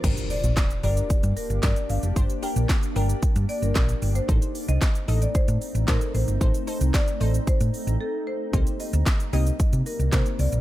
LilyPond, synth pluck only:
\new Staff \with { instrumentName = "Synth pluck" } { \time 4/4 \key g \minor \tempo 4 = 113 <d' g' bes'>4~ <d' g' bes'>16 r16 <d' g' bes'>4~ <d' g' bes'>16 r16 <d' g' bes'>4 | <d' g' c''>8 <d' g' bes'>4 <d' g' bes'>4. r4 | <ees' a' c''>4~ <ees' a' c''>16 r16 <ees' a' ees''>4~ <ees' a' ees''>16 r16 <ees' a' c''>4 | <ees' a' c''>8 <ees' a' c''>4 <ees' a' c''>4. r4 |
<bes c' ees' g' c''>4~ <bes c' ees' g' c''>16 r16 <bes c' ees' g' ees''>4~ <bes c' ees' g' ees''>16 r16 <bes c' ees' g' bes'>4 | }